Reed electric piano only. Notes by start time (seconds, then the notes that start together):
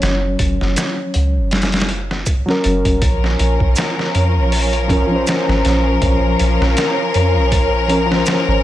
Already playing: F#3 C#4 C#5
2.46 F#3 C#4
2.50 A#4
4.88 F3 C#4
4.92 A#4
5.07 F3
5.11 C#4
5.16 C5
7.88 F3 C#4
7.92 A#4
8.06 F3
8.11 C#4
8.15 C5